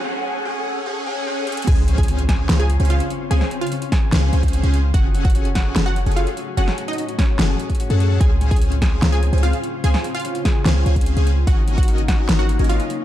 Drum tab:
CC |--------------------------------|x-------------------------------|--------------------------------|--------------------------------|
HH |----------------------------xxxx|x---x-xxx-x-x---x---x-xxx-x-x---|x---x-xxx-x-x---x---x-xxx-x-x---|x---x-xxx-x-x---x---x-xxx-x-x---|
SD |--------------------------------|------------o---o---------------|--o---------o---o---------------|------------o---o---------------|
BD |--------------------------------|o-----o-----o-------------------|------------o---------o---------|o-----o-----o-------------------|

CC |--------------------------------|--------------------------------|--------------------------------|--------------------------------|
HH |x---x-xxx-x-x---x---x-xxx-x-x---|x---x-xxx-x-x---x---x-xxx-x-x---|x---x-xxx-x-x---x---x-xxx-x-x---|x---x-xxx-x-x---x---x-xxx-x-x---|
SD |--o---------o---o---------------|------------o---o---------------|--o---------o---o---------------|------------o---o---------------|
BD |------------o---------o---------|o-----o-----o-------------------|------------o---------o---------|o-----o-----o-------------------|